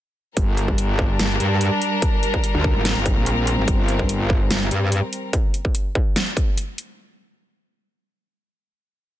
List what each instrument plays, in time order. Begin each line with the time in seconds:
0.37 wobble bass G1, string section G3 D4 A#4, kick, closed hi-hat
0.57 closed hi-hat
0.68 kick
0.78 closed hi-hat
0.99 kick
1.19 wobble bass G1, snare, closed hi-hat
1.40 wobble bass G2, closed hi-hat
1.61 closed hi-hat
1.82 closed hi-hat
2.02 kick, closed hi-hat
2.23 closed hi-hat
2.34 kick
2.44 closed hi-hat
2.55 wobble bass D2
2.64 kick
2.75 wobble bass G#1
2.85 string section C4, snare, closed hi-hat
2.96 wobble bass G1
3.06 kick, closed hi-hat
3.17 wobble bass A#1
3.26 closed hi-hat
3.47 closed hi-hat
3.58 wobble bass G#1
3.68 wobble bass G1, kick, closed hi-hat
3.89 closed hi-hat
3.99 kick
4.09 closed hi-hat
4.30 kick
4.51 wobble bass G1, snare, closed hi-hat
4.71 wobble bass G2, closed hi-hat
4.92 closed hi-hat
5.13 closed hi-hat
5.33 kick, closed hi-hat
5.54 closed hi-hat
5.65 kick
5.75 closed hi-hat
5.95 kick
6.16 snare, closed hi-hat
6.37 kick, closed hi-hat
6.57 closed hi-hat
6.78 closed hi-hat